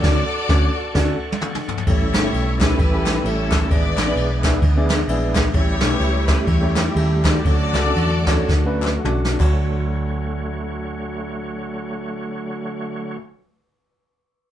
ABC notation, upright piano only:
X:1
M:4/4
L:1/16
Q:"Swing" 1/4=127
K:D
V:1 name="Upright piano"
[D,A,CDFc]2 z2 [A,CDFc]2 z2 [A,CDFA]2 z6 | [A,CEGc]2 z [A,CEGe]2 z [A,CEGc]2 z [A,CEGA]2 z [A,CEGc]2 z2 | [B,DE^Gd]2 z [B,DEGd]2 z [B,DEGe]2 z [B,DEGd]2 z [B,DEGe]2 z2 | [A,CEGc]2 z [A,CEGB]2 z [A,CEGc]2 z [A,CEGc]2 z [A,CEGA]2 z2 |
[A,CDFc]2 z [A,CDFA]2 z [A,CDFc]2 z [A,CDFB]2 z [A,CDFda]2 [A,DFc]2- | [A,DFc]16- | [A,DFc]16 |]
V:2 name="Upright piano" clef=bass
z16 | A,,6 z8 z2 | ^G,,6 z8 z2 | A,,6 z8 z2 |
D,6 z8 D,,2- | D,,16- | D,,16 |]